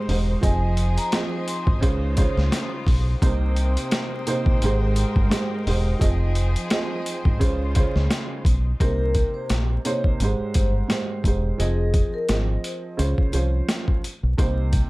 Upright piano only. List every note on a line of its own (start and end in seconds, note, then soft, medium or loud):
0.09 0.41 G#2 medium
0.09 0.41 G#3 medium
0.09 0.42 G4 medium
0.09 0.42 C5 medium
0.41 1.07 F3 medium
0.41 1.07 C4 medium
0.41 1.08 G#4 medium
0.41 1.08 D#5 loud
1.13 1.83 F3 medium
1.13 1.83 C4 medium
1.13 1.83 G#4 medium
1.13 1.84 D#5 loud
1.81 2.14 C#3 loud
1.81 2.14 C#4 medium
1.81 2.15 F4 medium
1.81 2.15 C5 loud
2.16 2.82 C#3 loud
2.16 2.82 C#4 medium
2.16 2.82 F4 medium
2.16 2.83 C5 loud
3.22 4.19 C3 medium
3.22 4.19 A#3 medium
3.22 4.20 D#4 medium
3.22 4.20 C5 loud
4.26 4.61 C3 medium
4.26 4.62 A#3 medium
4.26 4.62 D#4 medium
4.26 4.62 C5 loud
4.64 5.28 G#2 loud
4.64 5.28 G#3 medium
4.64 5.28 G4 medium
4.64 5.29 C5 loud
5.30 5.63 G#2 medium
5.30 5.63 G#3 medium
5.30 5.64 G4 medium
5.30 5.64 C5 medium
5.67 5.99 G#2 medium
5.67 5.99 G#3 medium
5.67 6.00 G4 medium
5.67 6.00 C5 medium
5.99 6.65 F3 medium
5.99 6.65 C4 medium
5.99 6.66 G#4 medium
5.99 6.66 D#5 loud
6.71 7.41 F3 loud
6.71 7.41 C4 medium
6.71 7.41 G#4 medium
6.71 7.42 D#5 loud
7.39 7.72 C#3 loud
7.39 7.73 C#4 medium
7.39 7.73 F4 medium
7.39 7.73 C5 loud
7.75 8.40 C#3 loud
7.75 8.40 C#4 medium
7.75 8.41 F4 medium
7.75 8.41 C5 loud
8.80 9.77 C3 medium
8.80 9.78 A#3 medium
8.80 9.78 D#4 medium
8.80 9.78 C5 loud
9.85 10.20 C3 medium
9.85 10.20 A#3 medium
9.85 10.20 D#4 medium
9.85 10.21 C5 loud
10.22 10.86 G#2 medium
10.22 10.86 G#3 medium
10.22 10.86 G4 medium
10.22 10.87 C5 loud
10.88 11.21 G#2 medium
10.88 11.22 G#3 medium
10.88 11.22 G4 medium
10.88 11.22 C5 medium
11.26 11.58 G#2 medium
11.26 11.58 G#3 medium
11.26 11.58 G4 medium
11.26 11.58 C5 medium
11.58 12.23 F3 medium
11.58 12.24 C4 medium
11.58 12.24 G#4 medium
11.58 12.24 D#5 loud
12.29 12.99 F3 medium
12.29 12.99 C4 medium
12.29 13.00 G#4 medium
12.29 13.00 D#5 loud
12.97 13.30 C#3 medium
12.97 13.31 C#4 medium
12.97 13.31 F4 medium
12.97 13.31 C5 loud
13.33 13.98 F3 medium
13.33 13.98 C#4 medium
13.33 13.99 F4 medium
13.33 13.99 C5 medium
14.38 14.90 C3 medium
14.38 14.90 A#3 medium
14.38 14.90 D#4 medium
14.38 14.90 C5 loud